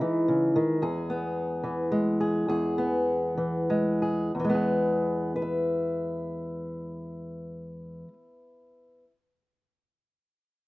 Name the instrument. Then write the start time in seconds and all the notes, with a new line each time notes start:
steel-string acoustic guitar
Already playing: G#3 D#4 E4
0.01 E3
0.28 C#3
0.56 D#3
0.82 E2 G#4
1.10 B3
1.64 E3
1.92 G#3
2.21 G#4
2.48 E2 G#4
2.78 B3
3.37 E3
3.70 G#3
4.02 G#4
4.35 E2
4.40 E3
4.45 G#3
4.50 B3
4.55 G#4
5.36 B4
5.42 E5